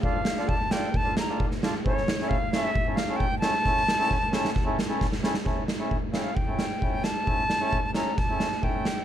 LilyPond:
<<
  \new Staff \with { instrumentName = "Flute" } { \time 4/4 \tempo 4 = 132 f''4 a''8 g''8 a''8 bes''8 r4 | cis''4 f''8 e''4 f''8 g''8 a''8~ | a''2. r4 | r4. f''32 g''32 f''16 g''4. a''8~ |
a''4. bes''8 a''4 g''4 | }
  \new Staff \with { instrumentName = "Accordion" } { \time 4/4 <d' f' a'>8 r16 <d' f' a'>16 r8 <d' f' a'>8 r16 <d' f' a'>16 r16 <d' f' a'>16 r8 <d' f' a'>16 r16 | <cis' e' a'>8 r16 <cis' e' a'>16 r8 <cis' e' a'>8 r16 <cis' e' a'>16 r16 <cis' e' a'>16 r8 <cis' e' a'>16 r16 | <cis' e' a'>8 r16 <cis' e' a'>16 r8 <cis' e' a'>8 r16 <cis' e' a'>16 r16 <cis' e' a'>16 r8 <cis' e' a'>16 r16 | <cis' e' a'>8 r16 <cis' e' a'>16 r8 <cis' e' a'>8 r16 <cis' e' a'>16 r8 <cis' e' a'>8 r8 |
<cis' e' a'>8 r16 <cis' e' a'>16 r8 <cis' e' a'>8 r16 <cis' e' a'>16 r8 <cis' e' a'>8 r8 | }
  \new DrumStaff \with { instrumentName = "Drums" } \drummode { \time 4/4 bd8 sn16 sn16 bd8 sn8 bd8 sn8 bd16 sn16 sn8 | bd16 sn16 sn16 sn16 bd8 sn8 bd8 sn8 bd8 sn16 sn16 | <bd sn>16 sn16 sn8 <bd sn>8 sn16 sn16 <bd sn>8 sn8 <bd sn>16 sn16 sn16 sn16 | <bd sn>8 sn8 bd8 sn8 bd8 sn8 bd8 sn8 |
bd8 sn8 bd8 sn8 <bd sn>8 sn16 sn16 bd8 sn8 | }
>>